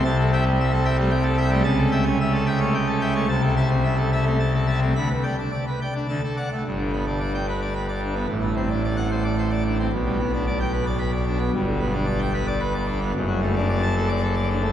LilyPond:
<<
  \new Staff \with { instrumentName = "Pipe organ" } { \time 3/4 \key g \major \tempo 4 = 110 << { a''16 a'16 <e'' g''>16 g16 e''16 a'16 <e'' g''>16 g16 g''16 a'16 <e'' g''>16 g16 | a''16 a'16 <e'' g''>16 cis'16 e''16 a'16 <e'' g''>16 cis'16 g''16 a'16 <e'' g''>16 cis'16 | a''16 a'16 <e'' a''>16 c'16 e''16 a'16 <e'' a''>16 c'16 a''16 a'16 <e'' a''>16 c'16 | b''16 b'16 <d'' g''>16 d'16 d''16 b'16 <d'' g''>16 r16 a''16 a'16 <d'' fis''>16 a16 |
r4 r16 g''16 r4. | r4 r16 fis''16 r4. | r4 r16 g''16 r4. | r4 r16 g''16 r4. |
r4 r16 a''16 r4. | } \\ { c4.~ c16 a16 r8. a16 | cis4.~ cis16 a16 r8. a16 | c4.~ c16 a16 r8. a16 | d16 r4. d'16 d16 r8. |
g,16 d16 b16 d'16 d''16 r16 b'16 d''16 b'16 d''16 d'16 b16 | a,16 a16 c'16 d'16 d''16 r16 c''16 d''16 c''16 d''16 d'16 c'16 | b,16 g16 b16 d'16 d''16 r16 b'16 d''16 b'16 d''16 d'16 b16 | g,16 d16 b16 d'16 d''16 r16 b'16 d''16 b'16 d''16 d'16 b16 |
fis,16 fis16 a16 d'16 d''16 r16 a'16 d''16 a'16 d''16 d'16 a16 | } >> }
  \new Staff \with { instrumentName = "Pipe organ" } { \clef bass \time 3/4 \key g \major c,2. | cis,2. | c,2. | d,16 r4. r16 d,16 r8. |
g,,2. | a,,2. | b,,2. | g,,2. |
fis,,2. | }
>>